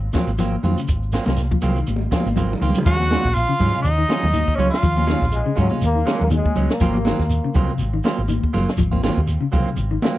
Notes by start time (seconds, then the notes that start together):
0.13 F3 F#3 A#3 C4 F4, kick, snare, closed hi-hat, high conga, shekere
0.27 G#1, shekere
0.38 F3 F#3 A#3 C4 F4, snare, closed hi-hat, high conga, shekere
0.63 F2 D#3 F#3 C4 F4, closed hi-hat, high conga, low conga, shekere
0.76 C#3, shekere
0.88 G#1, kick, closed hi-hat, high conga, shekere
1.02 closed hi-hat
1.12 F#3 A#3 C4 F4, snare, closed hi-hat, shekere
1.25 C2 F#3 A#3 C4 F4, snare, high conga, shekere
1.37 snare, closed hi-hat, high conga, shekere
1.51 F3, kick, closed hi-hat, high conga
1.61 C2 F#3 A#3 C4 F4, open hi-hat, low conga, shekere
1.75 D#3, closed hi-hat, shekere
1.87 G#1, closed hi-hat, high conga, shekere
1.96 high conga
2.01 closed hi-hat
2.11 F3 F#3 A#3 C4 F4, kick, snare, closed hi-hat, shekere
2.20 high conga
2.26 G#1, high conga, shekere
2.36 F3 F#3 A#3 C4 F4, kick, closed hi-hat, low conga, shekere
2.51 closed hi-hat, low conga
2.60 C#2 D#3 A#3 C4 F4, muted clean electric guitar stroke, closed hi-hat, shekere
2.70 low conga
2.74 C#3, closed hi-hat, low conga, shekere
2.85 D#2 F3 G#3 C#4 F4 F#4 F#5, muted clean electric guitar stroke, kick, closed hi-hat, high conga, shekere
3.00 G#3 C#4, muted clean electric guitar stroke, snare, high conga
3.10 D#3 F#3 G#3 C#4 F4, snare, closed hi-hat, high conga, shekere
3.25 A#1, kick
3.34 F4 F5, closed hi-hat, high conga, shekere
3.49 C#3
3.59 G#2 F#3 G#3 C#4 F4, kick, closed hi-hat, low conga, shekere
3.74 C3 G#3 C#4 F4, muted fingered electric bass stroke, closed hi-hat
3.82 D#2 D#4 D#5, closed hi-hat, high conga, shekere
3.98 D#3
4.09 F#3 G#3 C#4 F4, snare, closed hi-hat, high conga, shekere
4.23 D#2, snare, low conga
4.33 D#3, closed hi-hat, high conga, shekere
4.48 kick
4.55 C#2 F#3 G#3 C#4 C#5, shekere
4.59 C#4 F4, closed hi-hat, low conga
4.70 F4 F5, snare, closed hi-hat
4.83 D#2 F3, kick, closed hi-hat, high conga, shekere
4.96 G#3 C#4 F4, high conga
5.07 D#3 F#3 G#3 C#4 F4, snare, closed hi-hat, high conga, shekere
5.22 A#1, kick, snare
5.32 G#3, closed hi-hat, high conga, shekere
5.46 C#3
5.55 G#2 F#3 G#3 C#4 F4, kick, closed hi-hat, low conga, shekere
5.70 C3 G#3 C#4 F4, muted fingered electric bass stroke, closed hi-hat, high conga
5.81 D#2 A#3, closed hi-hat, high conga, shekere
5.95 D#3
6.06 F#3 G#3 C#4 F4, snare, closed hi-hat, high conga, shekere
6.20 D#2 A#3, closed hi-hat, low conga
6.30 D#3 G#3, closed hi-hat, high conga, shekere
6.45 kick
6.56 C#2 F#3 G#3 C#4, muted clean electric guitar stroke, closed hi-hat, low conga, shekere
6.69 A#3, snare, closed hi-hat
6.80 G#1 F3 F#3 A#3 C4 F4, kick, closed hi-hat, high conga, shekere
6.95 high conga
7.05 D#3 F#3 A#3 C4 F4, snare, closed hi-hat, high conga, shekere
7.19 D#2, kick, snare
7.30 closed hi-hat, high conga, shekere
7.44 C#3
7.54 C2 F#3 A#3 C4 F4, kick, closed hi-hat, low conga, shekere
7.68 C3, muted fingered electric bass stroke, closed hi-hat
7.78 G#1, closed hi-hat, high conga, shekere
7.94 D#3
8.03 F#3 A#3 C4 F4, snare, closed hi-hat, high conga, shekere
8.18 G#1
8.28 D#3, closed hi-hat, high conga, shekere
8.44 kick
8.53 F#1 F#3 A#3 F4, muted clean electric guitar stroke, snare, closed hi-hat, low conga, shekere
8.68 snare, closed hi-hat
8.77 G#1 F3, kick, closed hi-hat, high conga, shekere
8.91 A#3 C4 F4, kick, high conga
9.03 D#3 F#3 A#3 C4 F4, snare, closed hi-hat, high conga, shekere
9.17 D#2, kick
9.27 closed hi-hat, high conga, shekere
9.41 C#3
9.52 C2 F#3 A#3 C4 F4, kick, open hi-hat, low conga, shekere
9.66 C3, closed hi-hat
9.76 G#1, closed hi-hat, high conga, shekere
9.91 D#3
10.02 F#3 A#3 C4 F4, snare, closed hi-hat, high conga, shekere